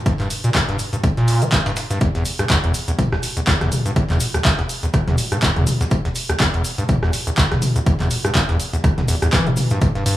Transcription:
0.06 acid bass G2, kick, closed hi-hat, tambourine, cabasa
0.20 acid bass G2, clap, closed hi-hat
0.30 open hi-hat, tambourine, cabasa
0.44 acid bass A#2, closed hi-hat, cabasa
0.55 acid bass G2, kick, snare, clap, closed hi-hat, tambourine, cabasa
0.69 acid bass G2, snare, closed hi-hat
0.79 open hi-hat, tambourine, cabasa
0.93 acid bass G2, closed hi-hat, cabasa
1.03 acid bass F2, kick, closed hi-hat, tambourine, cabasa
1.17 acid bass A#2, snare, closed hi-hat
1.28 open hi-hat, tambourine, cabasa
1.42 acid bass G3, closed hi-hat, cabasa
1.52 acid bass G2, kick, snare, clap, closed hi-hat, tambourine, cabasa
1.66 acid bass G2, snare, closed hi-hat, tambourine
1.76 snare, open hi-hat, tambourine, cabasa
1.90 acid bass G2, snare, closed hi-hat, cabasa
2.01 acid bass E2, kick, closed hi-hat, tambourine, cabasa
2.15 acid bass E2, snare, closed hi-hat
2.25 open hi-hat, tambourine, cabasa
2.38 acid bass G2, cross-stick, closed hi-hat, cabasa
2.50 acid bass E2, kick, snare, clap, closed hi-hat, tambourine, cabasa
2.64 acid bass E2, closed hi-hat
2.74 open hi-hat, tambourine, cabasa
2.88 acid bass E2, closed hi-hat, cabasa
2.99 acid bass D2, kick, closed hi-hat, mid tom, tambourine, cabasa
3.12 acid bass E2, cross-stick, snare
3.23 open hi-hat, cabasa
3.37 acid bass E2, closed hi-hat, cabasa
3.47 acid bass E2, kick, snare, clap, closed hi-hat, tambourine, cabasa
3.61 acid bass E2, cross-stick, snare, closed hi-hat, mid tom
3.72 open hi-hat, mid tom, tambourine, cabasa
3.86 acid bass G2, closed hi-hat, cabasa
3.96 acid bass E2, kick, closed hi-hat, tambourine, cabasa
4.10 acid bass E2, clap, closed hi-hat, mid tom
4.20 open hi-hat, tambourine, cabasa
4.34 acid bass E2, cross-stick, closed hi-hat, cabasa
4.45 acid bass D2, kick, snare, clap, closed hi-hat, tambourine, cabasa
4.59 acid bass E2, snare, closed hi-hat
4.69 open hi-hat, tambourine, cabasa
4.83 acid bass E2, closed hi-hat, cabasa
4.94 acid bass E2, kick, cross-stick, closed hi-hat, tambourine, cabasa
5.08 acid bass E2, snare, closed hi-hat, mid tom
5.18 open hi-hat, tambourine, cabasa
5.32 acid bass G2, cross-stick, closed hi-hat, cabasa
5.42 acid bass E2, kick, snare, clap, closed hi-hat, tambourine, cabasa
5.56 acid bass E2, closed hi-hat, mid tom
5.67 open hi-hat, mid tom, tambourine, cabasa
5.81 acid bass E2, snare, closed hi-hat, cabasa
5.91 acid bass D2, kick, closed hi-hat, tambourine, cabasa
6.05 acid bass E2, snare, closed hi-hat
6.15 open hi-hat, tambourine, cabasa
6.29 acid bass E2, cross-stick, closed hi-hat, cabasa
6.40 acid bass E2, kick, snare, clap, closed hi-hat, tambourine, cabasa
6.54 acid bass E2, closed hi-hat
6.64 open hi-hat, tambourine, cabasa
6.78 acid bass G2, closed hi-hat, cabasa
6.89 acid bass E2, kick, closed hi-hat, mid tom, tambourine, cabasa
7.03 acid bass E2, cross-stick, snare
7.13 open hi-hat, cabasa
7.27 acid bass E2, closed hi-hat, cabasa
7.37 acid bass D2, kick, snare, clap, closed hi-hat, tambourine, cabasa
7.52 acid bass E2, cross-stick, snare, closed hi-hat, mid tom
7.62 open hi-hat, mid tom, tambourine, cabasa
7.76 acid bass E2, closed hi-hat, cabasa
7.86 acid bass E2, kick, closed hi-hat, tambourine, cabasa
8.00 acid bass E2, clap, closed hi-hat, mid tom
8.10 open hi-hat, tambourine, cabasa
8.25 acid bass G2, cross-stick, cabasa
8.35 acid bass E2, kick, snare, clap, closed hi-hat, tambourine, cabasa
8.49 acid bass E2, snare, closed hi-hat
8.60 open hi-hat, tambourine, cabasa
8.73 acid bass E2, closed hi-hat, cabasa
8.84 acid bass D2, kick, cross-stick, closed hi-hat, tambourine, cabasa
8.98 acid bass E2, snare, closed hi-hat, mid tom
9.08 acid bass E2, open hi-hat, tambourine, cabasa
9.22 acid bass E2, cross-stick, closed hi-hat, cabasa
9.33 acid bass E3, kick, snare, clap, closed hi-hat, tambourine, cabasa
9.47 acid bass F2, closed hi-hat, mid tom
9.56 open hi-hat, mid tom, tambourine, cabasa
9.70 acid bass G2, snare, closed hi-hat, cabasa
9.81 acid bass G2, kick, closed hi-hat, tambourine, cabasa
9.95 acid bass G2, snare, closed hi-hat
10.06 acid bass G2, open hi-hat, tambourine, cabasa

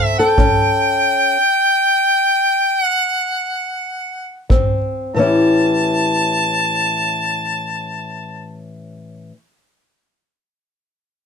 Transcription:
Already playing: steel-string acoustic guitar F#3 C4 A4, harmonica F#5
0.19 steel-string acoustic guitar A4, harmonica G5
0.38 steel-string acoustic guitar A2 C#4, kick
2.82 harmonica F#5
4.49 steel-string acoustic guitar A#2 C4, kick
5.14 steel-string acoustic guitar A2 E3, harmonica A5
5.19 steel-string acoustic guitar C#4 E4 G4

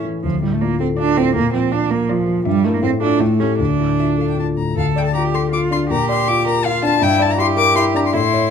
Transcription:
Already playing: grand piano A2 E3 E4 A4
0.04 grand piano E3
0.23 grand piano D2, cello F3
0.42 grand piano A2, cello G3
0.53 cello A3
0.61 cello A#3, grand piano F4, violin D5
0.80 cello C4, grand piano A4
0.97 cello D4, grand piano F4, violin D5
1.17 grand piano A2, cello C4
1.36 grand piano A#2, cello A#3
1.53 grand piano F3, cello C4
1.71 cello D4, grand piano F4, violin D5
1.90 cello A#3, grand piano A#4
2.09 cello F3, grand piano F4, violin D5
2.27 grand piano F3
2.45 grand piano G2, cello G3, violin E5
2.65 cello A3, grand piano E4 A#4
2.74 cello A#3
2.82 grand piano A2, cello C4, violin F5
3.00 cello D4, grand piano F4 A4
3.19 grand piano A2, cello A3, violin G5
3.39 cello C#4, grand piano G4 A4
3.59 grand piano D2, cello D4
3.79 grand piano A2
3.99 grand piano F4, violin E5
4.18 grand piano A4, violin F5
4.30 violin G5
4.37 grand piano F4, violin A5
4.57 grand piano A2, violin A#5
4.76 grand piano D2, cello A4, violin F5
4.96 grand piano D5, violin G5
5.06 violin A5
5.14 grand piano F4, cello G4, violin A#5
5.34 grand piano A4, violin C6
5.52 cello F4, grand piano F4, violin D6
5.71 grand piano D4, violin C6
5.90 grand piano A#2, cello G4, violin A#5
6.09 grand piano D5, violin C6
6.28 grand piano F4, violin D6
6.46 grand piano A#4, violin A#5
6.64 cello F4, grand piano F4, violin F5
6.83 grand piano D4, violin A5
7.01 grand piano G2, cello E4, violin G5
7.19 grand piano D5, violin A5
7.31 violin A#5
7.38 grand piano E4, cello G4, violin C6
7.57 grand piano A#4, violin D6
7.75 grand piano E4, violin C6
7.94 grand piano D4, violin A#5
8.06 violin C6
8.14 grand piano A2, cello E4, violin C6
8.33 grand piano C#5

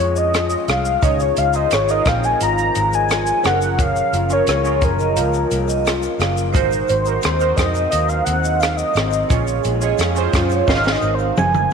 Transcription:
Already playing: clean electric guitar A#2 F3 C#4, synth keys C#4 F4 G#4 C#5 D#5, soft synth lead C#5
0.00 fingered electric bass F2, clean electric guitar G#3
0.15 vibraphone D#5, soft synth lead D#5, shaker
0.34 clean electric guitar F3, cross-stick, closed hi-hat, shaker
0.50 shaker
0.68 fingered electric bass C2, clean electric guitar G#3, vibraphone F5, soft synth lead F5, cross-stick, closed hi-hat, shaker
0.85 shaker
1.02 fingered electric bass C#2, clean electric guitar C#3, synth keys D#4 F4 G#4 C#5, vibraphone C#5, soft synth lead D#5, kick, closed hi-hat, shaker
1.19 soft synth lead C#5, shaker
1.37 fingered electric bass C#2, clean electric guitar F3, soft synth lead F5, closed hi-hat, shaker
1.53 synth keys D#4 F4 G#4 C5, vibraphone C5, soft synth lead D#5, shaker
1.71 fingered electric bass G#1, clean electric guitar G#3, vibraphone C#5, soft synth lead C#5, cross-stick, closed hi-hat, shaker
1.89 synth keys D#4 F4 G#4 A#4, soft synth lead D#5, shaker
2.05 fingered electric bass A#1, clean electric guitar C4, soft synth lead F5, kick, cross-stick, closed hi-hat, shaker
2.24 vibraphone D#5, soft synth lead G#5, shaker
2.40 fingered electric bass G#1, clean electric guitar F3, vibraphone F5, soft synth lead A#5, closed hi-hat, shaker
2.57 shaker
2.74 fingered electric bass G#1, clean electric guitar G#3, closed hi-hat, shaker
2.91 shaker
2.93 vibraphone D#5, soft synth lead G#5, shaker
3.09 clean electric guitar F3, closed hi-hat, shaker
3.11 cross-stick, shaker
3.26 shaker
3.43 fingered electric bass F#1, clean electric guitar F#2, synth keys F3 C#4 G#4 A#4, soft synth lead F#5, cross-stick, closed hi-hat, shaker
3.61 shaker
3.78 clean electric guitar F#2, vibraphone C#5, soft synth lead F5, kick, closed hi-hat, shaker
3.95 shaker
4.12 fingered electric bass F#1, clean electric guitar F3, closed hi-hat, shaker
4.29 synth keys C#4 F4 G#4 A#4, vibraphone A#4, soft synth lead C#5, shaker
4.46 fingered electric bass C#2, clean electric guitar A#3, vibraphone C#5, cross-stick, closed hi-hat, shaker
4.64 synth keys C#4 F4 G#4 A#4, shaker
4.81 fingered electric bass F#1, clean electric guitar C#4, soft synth lead A#4, kick, closed hi-hat, shaker
4.99 vibraphone D#5, shaker
5.16 fingered electric bass C#2, clean electric guitar F3, vibraphone F5, closed hi-hat, shaker
5.33 shaker
5.51 fingered electric bass C2, clean electric guitar A#3, closed hi-hat, shaker
5.67 vibraphone D#5, shaker
5.69 shaker
5.85 clean electric guitar F3, closed hi-hat, shaker
5.87 cross-stick, shaker
6.03 shaker
6.19 fingered electric bass F#1, clean electric guitar A#3, vibraphone F5, cross-stick, closed hi-hat, shaker
6.36 shaker
6.53 fingered electric bass G#1, clean electric guitar G#2, synth keys D#4 F#4 A#4, vibraphone C5, kick, closed hi-hat, shaker
6.55 synth keys C5, shaker
6.71 shaker
6.73 shaker
6.88 clean electric guitar F#3, soft synth lead C5, closed hi-hat, shaker
6.89 fingered electric bass G#1, shaker
7.05 synth keys D#4 F#4 A#4, vibraphone A#4, shaker
7.09 synth keys C5
7.22 fingered electric bass D#2, clean electric guitar C4, vibraphone C5, cross-stick, closed hi-hat, shaker
7.39 synth keys D#4 F#4 A#4 C5, shaker
7.56 fingered electric bass F2, clean electric guitar D#4, soft synth lead D#5, kick, cross-stick, closed hi-hat, shaker
7.74 vibraphone D#5, shaker
7.90 fingered electric bass D#2, clean electric guitar F#3, soft synth lead D#5, vibraphone F5, closed hi-hat, shaker
8.09 soft synth lead F5, shaker
8.24 fingered electric bass D#2, clean electric guitar C4, soft synth lead F#5, closed hi-hat, shaker
8.42 vibraphone D#5, shaker
8.45 shaker
8.60 clean electric guitar F#3, soft synth lead F5, closed hi-hat, shaker
8.63 cross-stick, shaker
8.77 soft synth lead D#5, shaker
8.94 fingered electric bass G#1, closed hi-hat, shaker
8.96 clean electric guitar C4, cross-stick, shaker
9.11 shaker
9.13 shaker
9.29 fingered electric bass A#1, clean electric guitar A#2, synth keys C#4 F4 G#4 C#5, vibraphone C#5, kick, closed hi-hat, shaker
9.46 shaker
9.63 fingered electric bass A#1, clean electric guitar G#3, closed hi-hat, shaker
9.80 synth keys C#4 F4 G#4 C#5, vibraphone D#5, shaker
9.98 fingered electric bass F2, clean electric guitar C#4, cross-stick, closed hi-hat, shaker
10.15 synth keys C#4 F4 G#4 C5, shaker
10.33 fingered electric bass F#2, clean electric guitar F4, kick, cross-stick, closed hi-hat, shaker
10.49 vibraphone C#5, shaker
10.51 shaker
10.67 fingered electric bass G#1, clean electric guitar G#2, synth keys D#4 F#4 A#4 C5, vibraphone D#5, soft synth lead F5, kick, snare, shaker
10.84 snare, shaker
10.92 soft synth lead D#5
11.02 fingered electric bass G#1, clean electric guitar C4, shaker
11.14 soft synth lead C5
11.19 vibraphone F5, shaker
11.37 fingered electric bass F#1, clean electric guitar F#3, soft synth lead G#5, mid tom, shaker
11.54 mid tom, shaker

